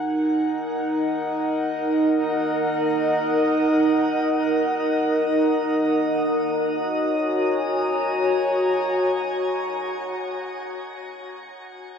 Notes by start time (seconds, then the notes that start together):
Already playing: D#4 A#4 F#5 G#5
0.14 D#5
6.53 F#4
6.67 C#5
6.82 G#5
6.97 A#5